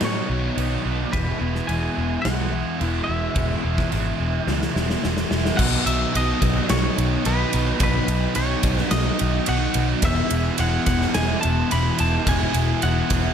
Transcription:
Already playing: distorted electric guitar B2 F#3 B3
0.00 picked electric bass A2, overdriven electric guitar B2 D#3 F#3 B3 D#4, snare, crash
0.05 clean electric guitar C#5
0.27 picked electric bass B1, overdriven electric guitar F#3 B3 D#4, distorted electric guitar B3
0.32 distorted electric guitar F#3
0.54 picked electric bass B1, distorted electric guitar B2 F#3, overdriven electric guitar D#3 F#3 B3 D#4, crash
0.59 distorted electric guitar B3
0.82 picked electric bass B1, overdriven electric guitar F#3 B3 D#4, distorted electric guitar F#3 B3
1.10 picked electric bass E1, distorted electric guitar E2 B2 E3, overdriven electric guitar E3 G#3 B3 E4, clean electric guitar B4, kick, crash
1.39 picked electric bass E1, distorted electric guitar B2 E3, overdriven electric guitar G#3 B3 E4
1.55 snare
1.66 picked electric bass E1, distorted electric guitar E2 B2, overdriven electric guitar E3 G#3 B3 E4, clean electric guitar G#5, crash
1.70 distorted electric guitar E3
1.95 picked electric bass E1, overdriven electric guitar G#3 B3 E4
2.22 picked electric bass B1, overdriven electric guitar E3 G#3, clean electric guitar F#5, snare, crash
2.26 overdriven electric guitar B3 E4
2.52 distorted electric guitar B2 E3, overdriven electric guitar G#3 B3 E4
2.79 picked electric bass E1, distorted electric guitar E2 B2 E3, overdriven electric guitar E3 G#3 B3 E4, crash
2.85 clean electric guitar E5
3.04 distorted electric guitar E3, overdriven electric guitar E4, clean electric guitar E5
3.08 picked electric bass E1, distorted electric guitar B2, overdriven electric guitar G#3 B3
3.34 picked electric bass E1, distorted electric guitar E2 B2 E3, overdriven electric guitar E3 G#3 B3 E4, kick, crash
3.62 picked electric bass E1, distorted electric guitar B2 E3, overdriven electric guitar G#3 B3 E4
3.78 kick, snare
3.89 picked electric bass G#1, distorted electric guitar E2 B2, overdriven electric guitar E3 G#3 B3 E4, crash
3.94 distorted electric guitar E3
4.17 picked electric bass E1, overdriven electric guitar G#3 B3 E4
4.46 picked electric bass C#2, overdriven electric guitar E3 G#3 B3 E4, snare
4.62 snare
4.74 picked electric bass E1, distorted electric guitar B2 E3, overdriven electric guitar G#3 B3 E4, snare
4.90 snare
5.02 picked electric bass E1, distorted electric guitar E2 B2 E3, overdriven electric guitar E3 G#3 B3 E4, snare
5.17 snare
5.29 picked electric bass E1, distorted electric guitar B2 E3, overdriven electric guitar B3 E4, snare
5.33 overdriven electric guitar G#3
5.45 snare
5.56 picked electric bass B1, distorted electric guitar B2 F#3 B3, overdriven electric guitar B2 D#3 F#3 B3, clean electric guitar F#5, kick, crash
5.61 overdriven electric guitar D#4
5.86 picked electric bass B1, clean electric guitar E5, ride
6.12 picked electric bass B1, distorted electric guitar B2 F#3 B3, overdriven electric guitar D#3 F#3 B3 D#4, ride
6.17 clean electric guitar D#5
6.41 picked electric bass B1, distorted electric guitar F#3 B3, kick, ride
6.68 picked electric bass B1, overdriven electric guitar B2 D#3 F#3 B3 D#4, clean electric guitar C#5, snare, ride
6.95 picked electric bass B1, overdriven electric guitar F#3 B3 D#4, ride
7.24 picked electric bass B1, distorted electric guitar B2 F#3 B3, overdriven electric guitar D#3 F#3 B3 D#4, clean electric guitar B4, ride
7.52 picked electric bass B1, distorted electric guitar F#3 B3, ride
7.78 picked electric bass B1, distorted electric guitar B2 F#3 B3, overdriven electric guitar B2 D#3 F#3 B3 D#4, kick, ride
7.83 clean electric guitar B4
8.08 picked electric bass B1, ride
8.35 picked electric bass B1, distorted electric guitar B2 F#3, overdriven electric guitar D#3 F#3 B3 D#4, clean electric guitar C#5, ride
8.39 distorted electric guitar B3
8.63 picked electric bass B1, distorted electric guitar F#3 B3, kick, ride
8.78 clean electric guitar B4, snare
8.90 picked electric bass B1, overdriven electric guitar B2 D#3 F#3 B3 D#4, clean electric guitar D#5, snare, ride
9.19 picked electric bass B1, overdriven electric guitar F#3 B3 D#4, ride
9.46 picked electric bass B1, distorted electric guitar B2 F#3 B3, overdriven electric guitar D#3 F#3 B3 D#4, clean electric guitar F#5, ride
9.74 picked electric bass B1, distorted electric guitar F#3 B3, ride
10.02 picked electric bass E1, distorted electric guitar E2 B2 E3, overdriven electric guitar E3 G#3 B3, clean electric guitar E5, kick, ride
10.06 overdriven electric guitar E4
10.30 picked electric bass E1, ride
10.58 picked electric bass E1, distorted electric guitar E2 B2 E3, overdriven electric guitar E3 G#3 B3 E4, clean electric guitar F#5, ride
10.86 picked electric bass E1, distorted electric guitar B2 E3, clean electric guitar F#5, kick, ride
11.01 snare
11.14 picked electric bass E1, overdriven electric guitar E3 G#3 B3 E4, clean electric guitar G#5, snare, ride
11.41 overdriven electric guitar B3 E4, clean electric guitar A5, ride
11.45 picked electric bass E1, overdriven electric guitar G#3
11.71 picked electric bass E1, distorted electric guitar E2 B2 E3, overdriven electric guitar E3 G#3 B3 E4, clean electric guitar B5, ride
11.99 picked electric bass E1, distorted electric guitar B2 E3, clean electric guitar A5, ride
12.27 picked electric bass E1, distorted electric guitar E2 B2 E3, overdriven electric guitar E3 G#3 B3 E4, clean electric guitar G#5, kick, ride
12.54 picked electric bass E1, ride
12.82 picked electric bass E1, distorted electric guitar E2 B2 E3, overdriven electric guitar E3 G#3 B3 E4, clean electric guitar F#5, ride
13.10 picked electric bass E1, distorted electric guitar B2 E3, kick, ride

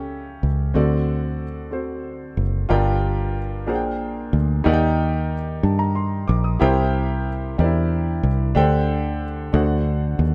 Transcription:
Already playing: fingered electric bass C#2, grand piano C#3 C#4 G4 A4 E5 G5
0.43 fingered electric bass C#2
0.74 fingered electric bass D2, grand piano D3 C4 F#4 A4 D5
1.71 grand piano C4 F#4 A4 C5
2.37 fingered electric bass F#1
2.69 fingered electric bass G1, grand piano G2 F4 G4 A#4 D5 G5
3.67 fingered electric bass A#1, grand piano A#2 D4 G#4 A#4 C5 F#5
3.75 grand piano G5
4.33 fingered electric bass D2
4.64 fingered electric bass D#2, grand piano D#3 D#4 G4 A#4 D5 F#5
4.74 grand piano G5
5.63 fingered electric bass G2, grand piano A5
5.79 grand piano A#5
5.95 grand piano C6
6.28 fingered electric bass A#1, grand piano D6
6.44 grand piano D#6
6.59 fingered electric bass C2, grand piano C3 E4 G4 A#4 C5 G5
7.58 fingered electric bass E2, grand piano D4 G4 A#4 C5 D5
7.64 grand piano E4
8.23 fingered electric bass C2
8.55 fingered electric bass D2, grand piano D3 D4 G4 A4 C5 G5
9.53 fingered electric bass D2, grand piano D3 D4 F#4 A4 C5 F#5
10.19 fingered electric bass D#2

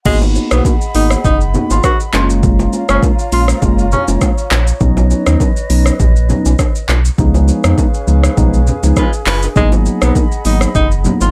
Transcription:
0.05 sub bass G#1, tenor saxophone G#3, tine electric piano A#3 B3 D#4 F#4, flute section G#4 D#5 F#5 B5, kick, crash, low conga, shaker
0.22 low bongo, shaker
0.35 low bongo, shaker
0.51 sub bass B1, tine electric piano A#3 B3 D#4 F#4, tenor saxophone B3, cross-stick, shaker
0.65 kick, high bongo, shaker
0.81 shaker
0.94 sub bass G#1, tine electric piano A#3 B3 D#4 F#4, tenor saxophone D#4, open hi-hat, shaker
1.11 cross-stick, shaker
1.25 sub bass F#1, tenor saxophone D#4, kick, low conga, shaker
1.41 shaker
1.54 tine electric piano A#3 B3 D#4 F#4, low conga, shaker
1.70 sub bass G#1, tenor saxophone F4, low bongo, shaker
1.84 tenor saxophone F#4, kick, cross-stick, high bongo, shaker
2.00 shaker
2.13 sub bass F#1, tine electric piano G#3 A#3 C#4 F4, flute section F4 C#5 F5 A#5, tenor saxophone F4, clap, high bongo, low bongo, shaker
2.30 shaker
2.43 kick, low conga, shaker
2.59 low bongo, shaker
2.73 low bongo, shaker
2.89 sub bass F#1, tine electric piano G#3 A#3 C#4 F4, tenor saxophone C#4, cross-stick, shaker
3.03 kick, high bongo, shaker
3.19 shaker
3.32 sub bass A#1, tine electric piano G#3 A#3 C#4 F4, tenor saxophone F4, open hi-hat, shaker
3.48 cross-stick, shaker
3.62 sub bass F#1, tine electric piano G#3 A#3 C#4 F4, kick, low conga, shaker
3.79 shaker
3.92 tenor saxophone C#4, low conga, shaker
4.08 sub bass F1, tine electric piano G#3 A#3 C#4 F4, low bongo, shaker
4.21 kick, cross-stick, high bongo, shaker
4.38 shaker
4.51 sub bass A#1, cross-stick, clap, high bongo, low bongo, shaker
4.67 shaker
4.81 sub bass B1, tine electric piano F#3 B3 C#4 D#4, flute section B4 D#5, kick, low conga, shaker
4.97 low bongo, shaker
5.11 low bongo, shaker
5.27 sub bass D#2, tine electric piano F#3 B3 C#4 D#4, cross-stick, shaker
5.40 kick, high bongo, shaker
5.57 shaker
5.70 sub bass B1, tine electric piano F#3 B3 C#4 D#4, open hi-hat, shaker
5.86 cross-stick, shaker
6.00 sub bass A#1, kick, low conga, shaker
6.16 shaker
6.29 tine electric piano F#3 B3 C#4 D#4, low conga, shaker
6.46 sub bass B1, low bongo, shaker
6.59 kick, cross-stick, high bongo, shaker
6.75 shaker
6.89 sub bass B1, clap, high bongo, low bongo, shaker
7.05 shaker
7.18 sub bass C#2, tine electric piano F3 G#3 B3 D#4, flute section C#4 G#4 B4 F5, kick, low conga, shaker
7.34 low bongo, shaker
7.48 low bongo, shaker
7.64 sub bass F2, tine electric piano F3 G#3 B3 D#4, cross-stick, shaker
7.78 kick, high bongo, shaker
7.94 shaker
8.07 sub bass C#2, tine electric piano F3 G#3 B3 D#4, shaker
8.23 cross-stick, shaker
8.37 sub bass B1, tine electric piano F3 G#3 B3 D#4, kick, low conga, shaker
8.54 shaker
8.67 low conga, shaker
8.83 sub bass C#2, tine electric piano F3 G#3 B3 D#4, low bongo, shaker
8.97 horn section G#3 F4 B4, kick, cross-stick, high bongo, shaker
9.13 shaker
9.26 sub bass F#1, horn section G#3 F4 B4, clap, open hi-hat, high bongo, low bongo, shaker
9.43 high bongo, shaker
9.56 sub bass G#1, tine electric piano F#3 A#3 B3 D#4, tenor saxophone G#3, flute section D#5 F#5 B5, kick, low conga, shaker
9.72 low bongo, shaker
9.86 low bongo, shaker
10.02 sub bass B1, tine electric piano F#3 A#3 B3 D#4, tenor saxophone B3, cross-stick, shaker
10.15 kick, high bongo, shaker
10.32 shaker
10.45 sub bass G#1, tine electric piano F#3 A#3 B3 D#4, tenor saxophone D#4, open hi-hat, shaker
10.61 cross-stick, shaker
10.75 sub bass F#1, tenor saxophone D#4, kick, low conga, shaker
10.91 shaker
11.04 tine electric piano F#3 A#3 B3 D#4, low conga, shaker
11.21 sub bass G#1, tenor saxophone F4, low bongo, shaker

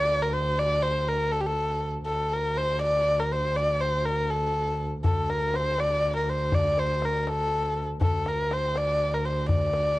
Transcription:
Already playing: double bass D2, erhu D5
0.22 erhu A#4
0.33 erhu C5
0.59 erhu D5
0.83 erhu C5
1.09 erhu A#4
1.32 erhu A4
1.41 erhu G4
1.47 erhu A4
2.06 double bass D2, erhu A4
2.33 erhu A#4
2.57 erhu C5
2.82 erhu D5
3.20 erhu A#4
3.32 erhu C5
3.57 erhu D5
3.81 erhu C5
4.05 erhu A#4
4.30 erhu A4
5.04 double bass D2, erhu A4, tombak dum
5.30 erhu A#4, tombak tek
5.54 erhu C5, tombak tek
5.78 erhu D5, tombak tek
6.16 erhu A#4
6.30 erhu C5
6.52 erhu D5, tombak dum
6.65 tombak ka
6.78 erhu C5, tombak tek
7.02 erhu A#4, tombak tek
7.23 erhu A#4
7.27 erhu A4, tombak tek
8.01 double bass D2, erhu A4, tombak dum
8.14 tombak ka
8.26 erhu A#4, tombak tek
8.51 erhu C5, tombak tek
8.75 erhu D5, tombak tek
9.14 erhu A#4
9.25 erhu C5
9.49 erhu D5, tombak dum
9.62 tombak ka
9.73 tombak tek

